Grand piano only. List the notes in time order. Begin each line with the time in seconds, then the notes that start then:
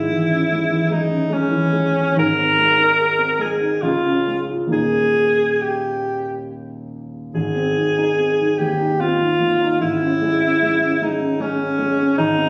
Already playing: G#1 G#2 G#3
0.11 E3
0.31 C#4
0.52 G#3
0.71 E3
0.90 G#3
1.10 C#4
1.30 G#3
1.51 E3
1.73 G#3
1.96 C#4
2.16 G#1 G#2
2.38 C4
2.58 G#3
2.78 D#4
2.98 G#4
3.18 C4
3.39 G#3
3.60 D#4
3.83 C#2
4.06 C#4
4.27 G#3
4.50 F4
4.67 D#2 D#3 A#3 D#4
4.71 D#1
7.34 G#1
7.56 C4
7.76 D#3
7.98 D#4
8.19 C4
8.40 D#3
8.60 D#2
8.80 D#4
9.00 C4
9.21 D#3
9.40 D#2
9.61 D#4
9.80 G#1
10.02 C#4
10.22 G#3
10.41 C#4
10.62 G#3
10.81 C#4
11.01 G#3
11.21 C#4
11.40 G#3
11.60 C#4
11.79 G#3
11.98 C#4
12.18 G#1
12.37 C4